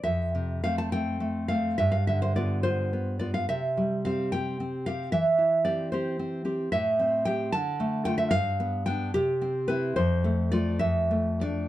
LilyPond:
\new Staff \with { instrumentName = "Nylon-string guitar" } { \time 6/8 \key c \major \tempo 4. = 72 << { e''4 f''16 a''16 g''4 f''8 | e''16 f''16 e''16 c''16 d''8 c''4 d''16 f''16 | e''4 f''8 g''4 f''8 | e''4 d''8 c''8 r4 |
e''4 g''8 a''4 g''16 e''16 | f''4 g''8 g'4 b'8 | c''4 d''8 e''4 d''8 | } \\ { f,8 c8 <a c'>8 <a c'>8 a8 <a c'>8 | g,8 d8 <b f'>8 <b f'>8 b8 <b f'>8 | c8 g8 <c' g'>8 <c' g'>8 c'8 <c' g'>8 | e8 e'8 <c' g'>8 <c' g'>8 c'8 <c' g'>8 |
a,8 c'8 <c' g'>8 d8 a8 <a f'>8 | g,8 b8 <b d'>8 c8 c'8 <c' e'>8 | f,8 a8 <a f'>8 f,8 a8 <a d'>8 | } >> }